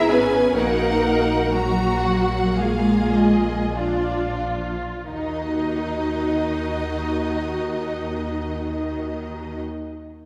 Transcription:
Already playing: double bass section G#1, viola section G#4
0.09 cello section B3, viola section C#4, violin section B4 G#5
0.55 double bass section A#1, cello section A#3, viola section D#4 F#4, violin section A#4 F#5
1.52 cello section F#3, viola section A#3 F#4, violin section F#4 A#5
2.03 violin section F#5
2.57 cello section G#3, viola section F4, violin section G#4 F5
3.14 violin section D#5
3.75 cello section F3, viola section D4 F4, violin section F4 D5
5.10 double bass section D#2, cello section D#3, violin section D#4 D#5, viola section D#4 F#4

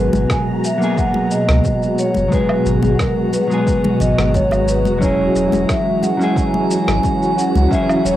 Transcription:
Already playing: string machine B2 G#3 F#4 A#5, clean electric guitar F#3 G#3 B3 G#4, vibraphone B4, synth texture A#5
0.13 sub bass G#1, high bongo, high conga, shaker
0.30 vibraphone G#5, kick, cross-stick, shaker
0.64 vibraphone E5, shaker
0.78 clean electric guitar F#3 A#3 B3
0.82 clean electric guitar G#4, shaker
0.97 vibraphone F#5, kick, shaker
1.14 high conga
1.31 vibraphone D#5, shaker
1.49 sub bass C#2, cross-stick, shaker
1.64 kick, high conga, shaker
1.83 shaker
1.98 vibraphone C#5, shaker
2.14 sub bass F#1, high conga, shaker
2.28 clean electric guitar F#3 G#3, kick, shaker
2.32 clean electric guitar B3 G#4, vibraphone B4
2.49 low woodblock
2.66 sub bass G#1, vibraphone G#4, shaker
2.83 sub bass G#1, high bongo, high conga, shaker
2.99 vibraphone A#4, kick, cross-stick, shaker
3.33 vibraphone B4, high conga, shaker
3.48 clean electric guitar F#3 G#3, shaker
3.52 clean electric guitar B3 G#4
3.67 kick, shaker
3.84 high conga, low conga
4.00 sub bass G#1, vibraphone D#5, low conga, shaker
4.18 sub bass G#1, cross-stick, shaker
4.34 vibraphone C#5, kick, high conga, low conga, shaker
4.51 high bongo, low woodblock, shaker
4.68 vibraphone B4, shaker
4.85 sub bass E1, high conga, shaker
4.99 string machine E3 C#4, clean electric guitar F#3 C#4 E4, vibraphone C#5, kick, shaker
5.04 clean electric guitar G#4
5.35 sub bass E1, shaker
5.52 sub bass E1, high bongo, high conga, shaker
5.69 vibraphone E5, kick, cross-stick, shaker
6.03 vibraphone F#5, high conga, shaker
6.17 clean electric guitar F#3 C#4, shaker
6.21 clean electric guitar E4 G#4
6.36 vibraphone G#5, kick, shaker
6.54 high conga
6.71 vibraphone G#5, shaker
6.88 sub bass G#1, cross-stick, shaker
7.03 kick, high conga, shaker
7.23 shaker
7.38 vibraphone F#5, shaker
7.55 sub bass C#2, high conga, shaker
7.68 clean electric guitar F#3 C#4, vibraphone E5, kick
7.73 clean electric guitar E4 G#4, shaker
7.89 low woodblock, shaker
8.05 sub bass E1, vibraphone C#5, shaker

